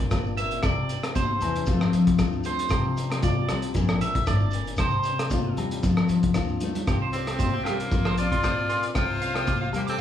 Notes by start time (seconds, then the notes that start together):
Already playing: A#2 C4 F4 D5
0.11 G1 F4, kick, cross-stick, closed hi-hat, high conga, low agogo, shekere
0.26 shekere
0.37 A#3 C4 E5, closed hi-hat, muted conga, shekere
0.51 closed hi-hat, shekere
0.63 C2 C3 D5, kick, cross-stick, closed hi-hat, muted conga, low agogo, shekere
0.76 C3
0.89 C4, closed hi-hat, muted conga, shekere
1.03 cross-stick, closed hi-hat, low agogo, shekere
1.15 D3 C5, kick, closed hi-hat, high conga, shekere
1.41 E2 E3, closed hi-hat, low agogo, shekere
1.56 closed hi-hat
1.66 F2 F3 A3 C4, kick, closed hi-hat, muted conga, high conga, shekere
1.71 F4 A4
1.81 cross-stick, low agogo
1.93 F3 C4, closed hi-hat, shekere
2.07 kick, closed hi-hat, shekere
2.18 D2 F4, kick, cross-stick, closed hi-hat, high conga, low conga, low agogo, shekere
2.33 shekere
2.44 A3 C4 C5, closed hi-hat, muted conga, shekere
2.58 closed hi-hat, shekere
2.69 C2 C3, kick, cross-stick, closed hi-hat, muted conga, low agogo, shekere
2.85 C3
2.97 C4, closed hi-hat, muted conga, shekere
3.10 cross-stick, closed hi-hat, low agogo
3.22 F4 D5, kick, closed hi-hat, high conga, shekere
3.48 C2 G3 C4, cross-stick, closed hi-hat, low agogo, shekere
3.62 closed hi-hat
3.74 A#1 A#2, kick, closed hi-hat, muted conga, high conga, shekere
3.89 cross-stick, low agogo
4.00 A#2 C4 E5, closed hi-hat, shekere
4.15 kick, closed hi-hat, shekere
4.26 G1 A2 D5, kick, cross-stick, closed hi-hat, high conga, low agogo, shekere
4.40 shekere
4.51 A#2, closed hi-hat, muted conga, shekere
4.65 closed hi-hat, shekere
4.76 C2 C5, kick, cross-stick, closed hi-hat, muted conga, low agogo, shekere
4.81 C3
4.91 C3, shekere
5.03 closed hi-hat, muted conga, shekere
5.08 C4
5.19 cross-stick, closed hi-hat, low agogo
5.30 F4, kick, closed hi-hat, high conga, shekere
5.56 E2 G3 C4, closed hi-hat, low agogo
5.71 closed hi-hat
5.83 F2 F3, kick, closed hi-hat, muted conga, high conga, shekere
5.97 cross-stick, low agogo
6.08 F3 C4, closed hi-hat, low conga, shekere
6.23 kick, closed hi-hat, high conga
6.34 D2 F4, kick, cross-stick, closed hi-hat, high conga, low agogo, shekere
6.49 high conga, shekere
6.60 A3 C4, closed hi-hat, low conga, shekere
6.75 closed hi-hat, low conga, shekere
6.87 C2 C4 F4 G4, muted nylon-string guitar stroke, kick, cross-stick, closed hi-hat, muted conga, low agogo, shekere
6.92 C5
7.02 C5
7.12 C4 G4 C5, closed hi-hat, muted conga, shekere
7.27 cross-stick, closed hi-hat, low agogo
7.39 F4 C5, kick, closed hi-hat, high conga, shekere
7.54 G5
7.64 C2 G3 A#3 F4 G4, cross-stick, closed hi-hat, muted conga, low agogo, shekere
7.80 closed hi-hat
7.91 A#1 C4 F4 C5, muted nylon-string guitar stroke, kick, closed hi-hat, muted conga, high conga, shekere
8.05 C5, cross-stick, low agogo, shekere
8.17 C4 F4 D5, closed hi-hat, shekere
8.32 A#2 C6, kick, closed hi-hat, shekere
8.43 A2 C5, kick, cross-stick, closed hi-hat, high conga, low agogo, shekere
8.58 shekere
8.68 A#2 C6, closed hi-hat, shekere
8.83 closed hi-hat
8.94 C2 C3 C4 F4 C5 G5, kick, cross-stick, closed hi-hat, muted conga, low agogo, shekere
9.21 C4 F5, closed hi-hat, muted conga, shekere
9.34 G5, cross-stick, closed hi-hat, low agogo
9.47 C4 D6, kick, closed hi-hat, high conga, shekere
9.61 F5
9.72 E2 G3 A#3, closed hi-hat, muted conga, low agogo, shekere
9.77 G4
9.87 C4 A4 D6, closed hi-hat